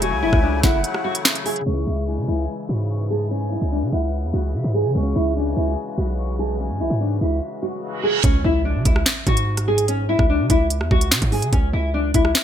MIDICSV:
0, 0, Header, 1, 9, 480
1, 0, Start_track
1, 0, Tempo, 410959
1, 22, Time_signature, 4, 2, 24, 8
1, 14529, End_track
2, 0, Start_track
2, 0, Title_t, "Flute"
2, 0, Program_c, 0, 73
2, 22, Note_on_c, 0, 80, 120
2, 699, Note_off_c, 0, 80, 0
2, 739, Note_on_c, 0, 78, 90
2, 1418, Note_off_c, 0, 78, 0
2, 1945, Note_on_c, 0, 85, 102
2, 2395, Note_off_c, 0, 85, 0
2, 2421, Note_on_c, 0, 80, 87
2, 3099, Note_off_c, 0, 80, 0
2, 3140, Note_on_c, 0, 83, 75
2, 3369, Note_off_c, 0, 83, 0
2, 3381, Note_on_c, 0, 85, 84
2, 3610, Note_off_c, 0, 85, 0
2, 3621, Note_on_c, 0, 81, 89
2, 3850, Note_off_c, 0, 81, 0
2, 3860, Note_on_c, 0, 80, 111
2, 4538, Note_off_c, 0, 80, 0
2, 4583, Note_on_c, 0, 78, 83
2, 5260, Note_off_c, 0, 78, 0
2, 5304, Note_on_c, 0, 76, 90
2, 5531, Note_off_c, 0, 76, 0
2, 5542, Note_on_c, 0, 80, 83
2, 5771, Note_off_c, 0, 80, 0
2, 5784, Note_on_c, 0, 85, 100
2, 6235, Note_off_c, 0, 85, 0
2, 6264, Note_on_c, 0, 80, 90
2, 6940, Note_off_c, 0, 80, 0
2, 6982, Note_on_c, 0, 83, 74
2, 7210, Note_off_c, 0, 83, 0
2, 7225, Note_on_c, 0, 85, 85
2, 7452, Note_off_c, 0, 85, 0
2, 7465, Note_on_c, 0, 81, 82
2, 7692, Note_off_c, 0, 81, 0
2, 7705, Note_on_c, 0, 80, 115
2, 8381, Note_off_c, 0, 80, 0
2, 8424, Note_on_c, 0, 76, 82
2, 9100, Note_off_c, 0, 76, 0
2, 14529, End_track
3, 0, Start_track
3, 0, Title_t, "Nylon-string guitar"
3, 0, Program_c, 1, 24
3, 22, Note_on_c, 1, 66, 88
3, 208, Note_off_c, 1, 66, 0
3, 263, Note_on_c, 1, 64, 88
3, 449, Note_off_c, 1, 64, 0
3, 502, Note_on_c, 1, 62, 74
3, 688, Note_off_c, 1, 62, 0
3, 739, Note_on_c, 1, 64, 70
3, 926, Note_off_c, 1, 64, 0
3, 1218, Note_on_c, 1, 66, 79
3, 1672, Note_off_c, 1, 66, 0
3, 1699, Note_on_c, 1, 68, 87
3, 1886, Note_off_c, 1, 68, 0
3, 1942, Note_on_c, 1, 61, 84
3, 2128, Note_off_c, 1, 61, 0
3, 2189, Note_on_c, 1, 64, 76
3, 2372, Note_off_c, 1, 64, 0
3, 2423, Note_on_c, 1, 62, 69
3, 2608, Note_off_c, 1, 62, 0
3, 2664, Note_on_c, 1, 64, 72
3, 2849, Note_off_c, 1, 64, 0
3, 3152, Note_on_c, 1, 66, 69
3, 3599, Note_off_c, 1, 66, 0
3, 3623, Note_on_c, 1, 68, 82
3, 3809, Note_off_c, 1, 68, 0
3, 3862, Note_on_c, 1, 61, 73
3, 4048, Note_off_c, 1, 61, 0
3, 4102, Note_on_c, 1, 64, 82
3, 4288, Note_off_c, 1, 64, 0
3, 4344, Note_on_c, 1, 62, 71
3, 4529, Note_off_c, 1, 62, 0
3, 4585, Note_on_c, 1, 64, 71
3, 4770, Note_off_c, 1, 64, 0
3, 5062, Note_on_c, 1, 66, 77
3, 5514, Note_off_c, 1, 66, 0
3, 5538, Note_on_c, 1, 68, 90
3, 5726, Note_off_c, 1, 68, 0
3, 5779, Note_on_c, 1, 61, 91
3, 5966, Note_off_c, 1, 61, 0
3, 6022, Note_on_c, 1, 64, 83
3, 6208, Note_off_c, 1, 64, 0
3, 6264, Note_on_c, 1, 62, 75
3, 6449, Note_off_c, 1, 62, 0
3, 6499, Note_on_c, 1, 64, 72
3, 6686, Note_off_c, 1, 64, 0
3, 6983, Note_on_c, 1, 66, 80
3, 7434, Note_off_c, 1, 66, 0
3, 7463, Note_on_c, 1, 68, 86
3, 7649, Note_off_c, 1, 68, 0
3, 7700, Note_on_c, 1, 61, 82
3, 7887, Note_off_c, 1, 61, 0
3, 7946, Note_on_c, 1, 64, 80
3, 8130, Note_off_c, 1, 64, 0
3, 8180, Note_on_c, 1, 62, 70
3, 8367, Note_off_c, 1, 62, 0
3, 8422, Note_on_c, 1, 64, 75
3, 8608, Note_off_c, 1, 64, 0
3, 8904, Note_on_c, 1, 66, 69
3, 9355, Note_off_c, 1, 66, 0
3, 9383, Note_on_c, 1, 68, 82
3, 9568, Note_off_c, 1, 68, 0
3, 9621, Note_on_c, 1, 61, 86
3, 9807, Note_off_c, 1, 61, 0
3, 9869, Note_on_c, 1, 64, 80
3, 10052, Note_off_c, 1, 64, 0
3, 10103, Note_on_c, 1, 62, 67
3, 10289, Note_off_c, 1, 62, 0
3, 10343, Note_on_c, 1, 64, 73
3, 10529, Note_off_c, 1, 64, 0
3, 10833, Note_on_c, 1, 66, 73
3, 11280, Note_off_c, 1, 66, 0
3, 11304, Note_on_c, 1, 68, 81
3, 11489, Note_off_c, 1, 68, 0
3, 11542, Note_on_c, 1, 61, 75
3, 11728, Note_off_c, 1, 61, 0
3, 11784, Note_on_c, 1, 64, 84
3, 11969, Note_off_c, 1, 64, 0
3, 12025, Note_on_c, 1, 62, 73
3, 12210, Note_off_c, 1, 62, 0
3, 12266, Note_on_c, 1, 64, 76
3, 12451, Note_off_c, 1, 64, 0
3, 12745, Note_on_c, 1, 66, 83
3, 13195, Note_off_c, 1, 66, 0
3, 13221, Note_on_c, 1, 68, 95
3, 13407, Note_off_c, 1, 68, 0
3, 13463, Note_on_c, 1, 61, 89
3, 13648, Note_off_c, 1, 61, 0
3, 13704, Note_on_c, 1, 64, 86
3, 13890, Note_off_c, 1, 64, 0
3, 13946, Note_on_c, 1, 62, 77
3, 14130, Note_off_c, 1, 62, 0
3, 14183, Note_on_c, 1, 64, 73
3, 14369, Note_off_c, 1, 64, 0
3, 14529, End_track
4, 0, Start_track
4, 0, Title_t, "Accordion"
4, 0, Program_c, 2, 21
4, 0, Note_on_c, 2, 49, 85
4, 0, Note_on_c, 2, 54, 79
4, 0, Note_on_c, 2, 57, 78
4, 0, Note_on_c, 2, 64, 95
4, 1896, Note_off_c, 2, 57, 0
4, 1905, Note_off_c, 2, 49, 0
4, 1905, Note_off_c, 2, 54, 0
4, 1906, Note_off_c, 2, 64, 0
4, 1943, Note_on_c, 2, 49, 80
4, 1943, Note_on_c, 2, 52, 75
4, 1944, Note_on_c, 2, 56, 73
4, 1944, Note_on_c, 2, 64, 88
4, 5745, Note_off_c, 2, 64, 0
4, 5783, Note_on_c, 2, 66, 92
4, 9576, Note_off_c, 2, 49, 0
4, 9576, Note_off_c, 2, 52, 0
4, 9577, Note_off_c, 2, 56, 0
4, 9584, Note_off_c, 2, 66, 0
4, 14529, End_track
5, 0, Start_track
5, 0, Title_t, "Grand piano"
5, 0, Program_c, 3, 0
5, 0, Control_c, 3, 64, 127
5, 0, Note_on_c, 3, 52, 73
5, 0, Note_on_c, 3, 57, 63
5, 0, Note_on_c, 3, 66, 79
5, 1865, Note_off_c, 3, 52, 0
5, 1877, Note_on_c, 3, 49, 66
5, 1897, Note_off_c, 3, 57, 0
5, 1929, Note_off_c, 3, 66, 0
5, 1941, Note_on_c, 3, 56, 60
5, 1960, Control_c, 3, 64, 0
5, 2005, Note_on_c, 3, 64, 73
5, 2166, Control_c, 3, 64, 127
5, 5700, Note_off_c, 3, 49, 0
5, 5718, Note_on_c, 3, 49, 62
5, 5735, Note_off_c, 3, 56, 0
5, 5767, Note_off_c, 3, 64, 0
5, 5781, Note_on_c, 3, 56, 64
5, 5845, Note_on_c, 3, 61, 78
5, 9544, Note_off_c, 3, 49, 0
5, 9575, Note_off_c, 3, 56, 0
5, 9607, Note_off_c, 3, 61, 0
5, 9638, Control_c, 3, 64, 0
5, 14529, End_track
6, 0, Start_track
6, 0, Title_t, "808-style bass"
6, 0, Program_c, 4, 38
6, 0, Note_on_c, 4, 28, 115
6, 144, Note_on_c, 4, 37, 108
6, 161, Note_off_c, 4, 28, 0
6, 264, Note_on_c, 4, 28, 102
6, 281, Note_off_c, 4, 37, 0
6, 377, Note_off_c, 4, 28, 0
6, 383, Note_on_c, 4, 37, 106
6, 728, Note_off_c, 4, 37, 0
6, 743, Note_on_c, 4, 30, 106
6, 983, Note_off_c, 4, 30, 0
6, 1944, Note_on_c, 4, 37, 110
6, 2174, Note_off_c, 4, 37, 0
6, 2183, Note_on_c, 4, 37, 101
6, 2543, Note_on_c, 4, 49, 95
6, 2561, Note_off_c, 4, 37, 0
6, 2657, Note_off_c, 4, 49, 0
6, 2663, Note_on_c, 4, 37, 100
6, 2893, Note_off_c, 4, 37, 0
6, 3143, Note_on_c, 4, 44, 102
6, 4179, Note_off_c, 4, 44, 0
6, 4223, Note_on_c, 4, 37, 104
6, 4463, Note_on_c, 4, 49, 98
6, 4481, Note_off_c, 4, 37, 0
6, 4577, Note_off_c, 4, 49, 0
6, 4583, Note_on_c, 4, 37, 102
6, 4943, Note_on_c, 4, 40, 99
6, 4960, Note_off_c, 4, 37, 0
6, 5057, Note_off_c, 4, 40, 0
6, 5062, Note_on_c, 4, 37, 104
6, 5302, Note_on_c, 4, 49, 99
6, 5320, Note_off_c, 4, 37, 0
6, 5417, Note_off_c, 4, 49, 0
6, 5422, Note_on_c, 4, 44, 102
6, 5662, Note_on_c, 4, 49, 95
6, 5679, Note_off_c, 4, 44, 0
6, 5776, Note_off_c, 4, 49, 0
6, 5782, Note_on_c, 4, 37, 111
6, 6013, Note_off_c, 4, 37, 0
6, 6022, Note_on_c, 4, 37, 104
6, 6483, Note_off_c, 4, 37, 0
6, 6501, Note_on_c, 4, 37, 99
6, 6732, Note_off_c, 4, 37, 0
6, 6982, Note_on_c, 4, 35, 109
6, 7823, Note_on_c, 4, 44, 96
6, 7841, Note_off_c, 4, 35, 0
6, 7942, Note_on_c, 4, 35, 98
6, 7960, Note_off_c, 4, 44, 0
6, 8057, Note_off_c, 4, 35, 0
6, 8062, Note_on_c, 4, 44, 103
6, 8408, Note_off_c, 4, 44, 0
6, 8423, Note_on_c, 4, 37, 105
6, 8653, Note_off_c, 4, 37, 0
6, 9623, Note_on_c, 4, 37, 115
6, 9853, Note_off_c, 4, 37, 0
6, 9863, Note_on_c, 4, 37, 108
6, 10223, Note_on_c, 4, 49, 102
6, 10241, Note_off_c, 4, 37, 0
6, 10337, Note_off_c, 4, 49, 0
6, 10343, Note_on_c, 4, 37, 105
6, 10573, Note_off_c, 4, 37, 0
6, 10824, Note_on_c, 4, 44, 108
6, 11860, Note_off_c, 4, 44, 0
6, 11903, Note_on_c, 4, 37, 108
6, 12143, Note_on_c, 4, 49, 100
6, 12160, Note_off_c, 4, 37, 0
6, 12257, Note_off_c, 4, 49, 0
6, 12264, Note_on_c, 4, 37, 106
6, 12623, Note_on_c, 4, 40, 98
6, 12641, Note_off_c, 4, 37, 0
6, 12737, Note_off_c, 4, 40, 0
6, 12743, Note_on_c, 4, 37, 108
6, 12984, Note_on_c, 4, 49, 101
6, 13002, Note_off_c, 4, 37, 0
6, 13098, Note_off_c, 4, 49, 0
6, 13103, Note_on_c, 4, 44, 110
6, 13344, Note_on_c, 4, 49, 100
6, 13361, Note_off_c, 4, 44, 0
6, 13457, Note_off_c, 4, 49, 0
6, 13463, Note_on_c, 4, 37, 114
6, 13694, Note_off_c, 4, 37, 0
6, 13704, Note_on_c, 4, 37, 105
6, 14164, Note_off_c, 4, 37, 0
6, 14184, Note_on_c, 4, 37, 103
6, 14414, Note_off_c, 4, 37, 0
6, 14529, End_track
7, 0, Start_track
7, 0, Title_t, "Impact"
7, 0, Program_c, 5, 103
7, 9622, Note_on_c, 5, 60, 84
7, 11543, Note_off_c, 5, 60, 0
7, 14529, End_track
8, 0, Start_track
8, 0, Title_t, "Reverse cymbal"
8, 0, Program_c, 6, 119
8, 8662, Note_on_c, 6, 60, 85
8, 9622, Note_off_c, 6, 60, 0
8, 14529, End_track
9, 0, Start_track
9, 0, Title_t, "Drums"
9, 23, Note_on_c, 9, 42, 73
9, 139, Note_off_c, 9, 42, 0
9, 383, Note_on_c, 9, 36, 102
9, 383, Note_on_c, 9, 37, 76
9, 500, Note_off_c, 9, 36, 0
9, 500, Note_off_c, 9, 37, 0
9, 741, Note_on_c, 9, 42, 79
9, 742, Note_on_c, 9, 38, 68
9, 743, Note_on_c, 9, 36, 96
9, 858, Note_off_c, 9, 38, 0
9, 858, Note_off_c, 9, 42, 0
9, 860, Note_off_c, 9, 36, 0
9, 982, Note_on_c, 9, 42, 79
9, 1099, Note_off_c, 9, 42, 0
9, 1103, Note_on_c, 9, 37, 99
9, 1220, Note_off_c, 9, 37, 0
9, 1342, Note_on_c, 9, 42, 85
9, 1459, Note_off_c, 9, 42, 0
9, 1462, Note_on_c, 9, 38, 114
9, 1472, Note_on_c, 9, 39, 92
9, 1579, Note_off_c, 9, 38, 0
9, 1582, Note_on_c, 9, 42, 92
9, 1589, Note_off_c, 9, 39, 0
9, 1699, Note_off_c, 9, 42, 0
9, 1702, Note_on_c, 9, 46, 65
9, 1819, Note_off_c, 9, 46, 0
9, 1822, Note_on_c, 9, 42, 46
9, 1882, Note_off_c, 9, 42, 0
9, 1882, Note_on_c, 9, 42, 56
9, 1999, Note_off_c, 9, 42, 0
9, 9622, Note_on_c, 9, 42, 70
9, 9623, Note_on_c, 9, 36, 116
9, 9739, Note_off_c, 9, 42, 0
9, 9740, Note_off_c, 9, 36, 0
9, 10342, Note_on_c, 9, 42, 75
9, 10343, Note_on_c, 9, 36, 92
9, 10459, Note_off_c, 9, 42, 0
9, 10460, Note_off_c, 9, 36, 0
9, 10463, Note_on_c, 9, 37, 103
9, 10580, Note_off_c, 9, 37, 0
9, 10582, Note_on_c, 9, 42, 81
9, 10583, Note_on_c, 9, 38, 106
9, 10593, Note_on_c, 9, 39, 82
9, 10699, Note_off_c, 9, 42, 0
9, 10700, Note_off_c, 9, 38, 0
9, 10710, Note_off_c, 9, 39, 0
9, 10823, Note_on_c, 9, 36, 96
9, 10823, Note_on_c, 9, 42, 75
9, 10940, Note_off_c, 9, 36, 0
9, 10940, Note_off_c, 9, 42, 0
9, 10943, Note_on_c, 9, 42, 80
9, 11060, Note_off_c, 9, 42, 0
9, 11182, Note_on_c, 9, 42, 88
9, 11183, Note_on_c, 9, 37, 68
9, 11299, Note_off_c, 9, 37, 0
9, 11299, Note_off_c, 9, 42, 0
9, 11423, Note_on_c, 9, 42, 76
9, 11540, Note_off_c, 9, 42, 0
9, 11543, Note_on_c, 9, 42, 72
9, 11660, Note_off_c, 9, 42, 0
9, 11903, Note_on_c, 9, 36, 98
9, 11903, Note_on_c, 9, 37, 69
9, 12020, Note_off_c, 9, 36, 0
9, 12020, Note_off_c, 9, 37, 0
9, 12262, Note_on_c, 9, 42, 77
9, 12263, Note_on_c, 9, 36, 93
9, 12379, Note_off_c, 9, 42, 0
9, 12380, Note_off_c, 9, 36, 0
9, 12503, Note_on_c, 9, 42, 80
9, 12619, Note_off_c, 9, 42, 0
9, 12624, Note_on_c, 9, 37, 93
9, 12741, Note_off_c, 9, 37, 0
9, 12743, Note_on_c, 9, 36, 96
9, 12860, Note_off_c, 9, 36, 0
9, 12863, Note_on_c, 9, 42, 80
9, 12980, Note_off_c, 9, 42, 0
9, 12984, Note_on_c, 9, 38, 108
9, 12994, Note_on_c, 9, 39, 86
9, 13100, Note_off_c, 9, 38, 0
9, 13103, Note_on_c, 9, 36, 102
9, 13103, Note_on_c, 9, 42, 91
9, 13110, Note_off_c, 9, 39, 0
9, 13220, Note_off_c, 9, 36, 0
9, 13220, Note_off_c, 9, 42, 0
9, 13223, Note_on_c, 9, 46, 65
9, 13340, Note_off_c, 9, 46, 0
9, 13343, Note_on_c, 9, 42, 71
9, 13460, Note_off_c, 9, 42, 0
9, 13463, Note_on_c, 9, 36, 120
9, 13463, Note_on_c, 9, 42, 73
9, 13580, Note_off_c, 9, 36, 0
9, 13580, Note_off_c, 9, 42, 0
9, 14183, Note_on_c, 9, 42, 76
9, 14184, Note_on_c, 9, 36, 94
9, 14300, Note_off_c, 9, 42, 0
9, 14301, Note_off_c, 9, 36, 0
9, 14305, Note_on_c, 9, 37, 103
9, 14422, Note_off_c, 9, 37, 0
9, 14424, Note_on_c, 9, 42, 75
9, 14425, Note_on_c, 9, 38, 105
9, 14435, Note_on_c, 9, 39, 85
9, 14529, Note_off_c, 9, 38, 0
9, 14529, Note_off_c, 9, 39, 0
9, 14529, Note_off_c, 9, 42, 0
9, 14529, End_track
0, 0, End_of_file